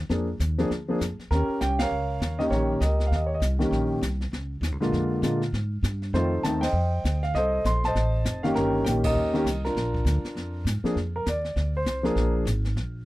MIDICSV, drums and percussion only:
0, 0, Header, 1, 2, 480
1, 0, Start_track
1, 0, Tempo, 301659
1, 150, Time_signature, 4, 2, 24, 8
1, 20765, End_track
2, 0, Start_track
2, 0, Title_t, "Drums"
2, 154, Note_on_c, 9, 25, 37
2, 154, Note_on_c, 9, 38, 35
2, 313, Note_off_c, 9, 38, 0
2, 636, Note_on_c, 9, 44, 56
2, 638, Note_on_c, 9, 38, 51
2, 796, Note_off_c, 9, 44, 0
2, 797, Note_off_c, 9, 38, 0
2, 932, Note_on_c, 9, 38, 34
2, 1091, Note_off_c, 9, 38, 0
2, 1126, Note_off_c, 9, 25, 0
2, 1126, Note_on_c, 9, 25, 46
2, 1126, Note_on_c, 9, 38, 39
2, 1285, Note_off_c, 9, 38, 0
2, 1607, Note_on_c, 9, 44, 52
2, 1608, Note_on_c, 9, 38, 49
2, 1766, Note_off_c, 9, 44, 0
2, 1768, Note_off_c, 9, 38, 0
2, 1900, Note_on_c, 9, 38, 32
2, 2059, Note_off_c, 9, 38, 0
2, 2091, Note_off_c, 9, 25, 0
2, 2091, Note_on_c, 9, 25, 35
2, 2091, Note_on_c, 9, 38, 37
2, 2250, Note_off_c, 9, 38, 0
2, 2559, Note_on_c, 9, 44, 48
2, 2561, Note_on_c, 9, 38, 54
2, 2719, Note_off_c, 9, 44, 0
2, 2720, Note_off_c, 9, 38, 0
2, 2850, Note_on_c, 9, 51, 59
2, 2851, Note_on_c, 9, 38, 73
2, 3009, Note_off_c, 9, 51, 0
2, 3011, Note_off_c, 9, 38, 0
2, 3045, Note_off_c, 9, 25, 0
2, 3045, Note_on_c, 9, 25, 44
2, 3524, Note_on_c, 9, 44, 45
2, 3525, Note_on_c, 9, 38, 52
2, 3683, Note_off_c, 9, 44, 0
2, 3684, Note_off_c, 9, 38, 0
2, 3815, Note_on_c, 9, 38, 31
2, 3974, Note_off_c, 9, 38, 0
2, 4001, Note_off_c, 9, 25, 0
2, 4001, Note_on_c, 9, 25, 38
2, 4001, Note_on_c, 9, 38, 37
2, 4161, Note_off_c, 9, 38, 0
2, 4475, Note_on_c, 9, 44, 47
2, 4477, Note_on_c, 9, 38, 53
2, 4635, Note_off_c, 9, 44, 0
2, 4636, Note_off_c, 9, 38, 0
2, 4771, Note_on_c, 9, 38, 34
2, 4930, Note_off_c, 9, 38, 0
2, 4964, Note_off_c, 9, 25, 0
2, 4964, Note_on_c, 9, 25, 49
2, 4964, Note_on_c, 9, 38, 40
2, 5123, Note_off_c, 9, 38, 0
2, 5436, Note_on_c, 9, 44, 52
2, 5437, Note_on_c, 9, 38, 52
2, 5595, Note_off_c, 9, 44, 0
2, 5596, Note_off_c, 9, 38, 0
2, 5732, Note_on_c, 9, 38, 33
2, 5892, Note_off_c, 9, 38, 0
2, 5921, Note_off_c, 9, 25, 0
2, 5921, Note_on_c, 9, 25, 44
2, 5921, Note_on_c, 9, 38, 35
2, 6081, Note_off_c, 9, 38, 0
2, 6403, Note_on_c, 9, 44, 54
2, 6405, Note_on_c, 9, 38, 56
2, 6562, Note_off_c, 9, 44, 0
2, 6564, Note_off_c, 9, 38, 0
2, 6694, Note_on_c, 9, 38, 34
2, 6854, Note_off_c, 9, 38, 0
2, 6888, Note_off_c, 9, 25, 0
2, 6888, Note_on_c, 9, 25, 42
2, 6888, Note_on_c, 9, 38, 39
2, 7047, Note_off_c, 9, 38, 0
2, 7365, Note_on_c, 9, 44, 47
2, 7367, Note_on_c, 9, 38, 50
2, 7524, Note_off_c, 9, 44, 0
2, 7526, Note_off_c, 9, 38, 0
2, 7662, Note_on_c, 9, 38, 32
2, 7821, Note_off_c, 9, 38, 0
2, 7844, Note_off_c, 9, 25, 0
2, 7844, Note_on_c, 9, 25, 43
2, 7844, Note_on_c, 9, 38, 36
2, 8003, Note_off_c, 9, 38, 0
2, 8321, Note_on_c, 9, 44, 51
2, 8323, Note_on_c, 9, 38, 53
2, 8480, Note_off_c, 9, 44, 0
2, 8482, Note_off_c, 9, 38, 0
2, 8618, Note_on_c, 9, 38, 37
2, 8778, Note_off_c, 9, 38, 0
2, 8808, Note_off_c, 9, 25, 0
2, 8808, Note_on_c, 9, 25, 40
2, 8808, Note_on_c, 9, 38, 40
2, 8967, Note_off_c, 9, 38, 0
2, 9285, Note_on_c, 9, 44, 44
2, 9286, Note_on_c, 9, 38, 50
2, 9444, Note_off_c, 9, 44, 0
2, 9446, Note_off_c, 9, 38, 0
2, 9578, Note_on_c, 9, 38, 33
2, 9737, Note_off_c, 9, 38, 0
2, 9769, Note_off_c, 9, 25, 0
2, 9769, Note_on_c, 9, 25, 43
2, 9769, Note_on_c, 9, 38, 37
2, 9928, Note_off_c, 9, 38, 0
2, 10251, Note_on_c, 9, 44, 50
2, 10253, Note_on_c, 9, 38, 53
2, 10410, Note_off_c, 9, 44, 0
2, 10412, Note_off_c, 9, 38, 0
2, 10544, Note_on_c, 9, 51, 59
2, 10546, Note_on_c, 9, 38, 69
2, 10703, Note_off_c, 9, 51, 0
2, 10705, Note_off_c, 9, 38, 0
2, 10739, Note_off_c, 9, 25, 0
2, 10739, Note_on_c, 9, 25, 45
2, 11217, Note_on_c, 9, 44, 45
2, 11219, Note_on_c, 9, 38, 48
2, 11376, Note_off_c, 9, 44, 0
2, 11378, Note_off_c, 9, 38, 0
2, 11504, Note_on_c, 9, 38, 34
2, 11663, Note_off_c, 9, 38, 0
2, 11693, Note_off_c, 9, 25, 0
2, 11693, Note_on_c, 9, 25, 38
2, 11693, Note_on_c, 9, 38, 37
2, 11852, Note_off_c, 9, 38, 0
2, 12174, Note_on_c, 9, 44, 47
2, 12176, Note_on_c, 9, 38, 57
2, 12333, Note_off_c, 9, 44, 0
2, 12335, Note_off_c, 9, 38, 0
2, 12469, Note_on_c, 9, 38, 36
2, 12628, Note_off_c, 9, 38, 0
2, 12657, Note_off_c, 9, 25, 0
2, 12657, Note_on_c, 9, 25, 39
2, 12657, Note_on_c, 9, 38, 39
2, 12816, Note_off_c, 9, 38, 0
2, 13132, Note_on_c, 9, 44, 55
2, 13134, Note_on_c, 9, 38, 52
2, 13292, Note_off_c, 9, 44, 0
2, 13293, Note_off_c, 9, 38, 0
2, 13428, Note_on_c, 9, 38, 32
2, 13587, Note_off_c, 9, 38, 0
2, 13613, Note_off_c, 9, 25, 0
2, 13613, Note_on_c, 9, 25, 47
2, 13613, Note_on_c, 9, 38, 38
2, 13772, Note_off_c, 9, 38, 0
2, 14098, Note_on_c, 9, 44, 54
2, 14099, Note_on_c, 9, 38, 57
2, 14257, Note_off_c, 9, 44, 0
2, 14259, Note_off_c, 9, 38, 0
2, 14381, Note_on_c, 9, 51, 69
2, 14385, Note_on_c, 9, 36, 78
2, 14540, Note_off_c, 9, 51, 0
2, 14544, Note_off_c, 9, 36, 0
2, 14577, Note_off_c, 9, 25, 0
2, 14577, Note_on_c, 9, 25, 42
2, 14868, Note_on_c, 9, 38, 42
2, 15027, Note_off_c, 9, 38, 0
2, 15056, Note_on_c, 9, 44, 52
2, 15058, Note_on_c, 9, 38, 55
2, 15215, Note_off_c, 9, 44, 0
2, 15217, Note_off_c, 9, 38, 0
2, 15353, Note_on_c, 9, 38, 33
2, 15513, Note_off_c, 9, 38, 0
2, 15535, Note_off_c, 9, 25, 0
2, 15535, Note_on_c, 9, 25, 45
2, 15535, Note_on_c, 9, 38, 37
2, 15694, Note_off_c, 9, 38, 0
2, 15821, Note_on_c, 9, 36, 50
2, 15981, Note_off_c, 9, 36, 0
2, 16009, Note_on_c, 9, 44, 51
2, 16011, Note_on_c, 9, 38, 53
2, 16169, Note_off_c, 9, 44, 0
2, 16170, Note_off_c, 9, 38, 0
2, 16300, Note_on_c, 9, 38, 36
2, 16459, Note_off_c, 9, 38, 0
2, 16488, Note_off_c, 9, 25, 0
2, 16488, Note_on_c, 9, 25, 43
2, 16488, Note_on_c, 9, 38, 41
2, 16648, Note_off_c, 9, 38, 0
2, 16970, Note_on_c, 9, 44, 51
2, 16972, Note_on_c, 9, 38, 52
2, 17129, Note_off_c, 9, 44, 0
2, 17131, Note_off_c, 9, 38, 0
2, 17261, Note_on_c, 9, 38, 31
2, 17420, Note_off_c, 9, 38, 0
2, 17446, Note_off_c, 9, 25, 0
2, 17446, Note_on_c, 9, 25, 41
2, 17446, Note_on_c, 9, 38, 36
2, 17606, Note_off_c, 9, 38, 0
2, 17922, Note_on_c, 9, 44, 46
2, 17924, Note_on_c, 9, 38, 54
2, 18081, Note_off_c, 9, 44, 0
2, 18083, Note_off_c, 9, 38, 0
2, 18212, Note_on_c, 9, 38, 35
2, 18371, Note_off_c, 9, 38, 0
2, 18399, Note_off_c, 9, 25, 0
2, 18399, Note_on_c, 9, 25, 47
2, 18399, Note_on_c, 9, 38, 39
2, 18558, Note_off_c, 9, 38, 0
2, 18874, Note_on_c, 9, 44, 47
2, 18876, Note_on_c, 9, 38, 50
2, 19033, Note_off_c, 9, 44, 0
2, 19035, Note_off_c, 9, 38, 0
2, 19166, Note_on_c, 9, 38, 32
2, 19325, Note_off_c, 9, 38, 0
2, 19353, Note_off_c, 9, 25, 0
2, 19353, Note_on_c, 9, 25, 40
2, 19353, Note_on_c, 9, 38, 35
2, 19512, Note_off_c, 9, 38, 0
2, 19834, Note_on_c, 9, 44, 53
2, 19836, Note_on_c, 9, 38, 54
2, 19993, Note_off_c, 9, 44, 0
2, 19995, Note_off_c, 9, 38, 0
2, 20121, Note_on_c, 9, 38, 34
2, 20280, Note_off_c, 9, 38, 0
2, 20312, Note_off_c, 9, 25, 0
2, 20312, Note_on_c, 9, 25, 48
2, 20312, Note_on_c, 9, 38, 40
2, 20471, Note_off_c, 9, 38, 0
2, 20765, Note_off_c, 9, 25, 0
2, 20765, End_track
0, 0, End_of_file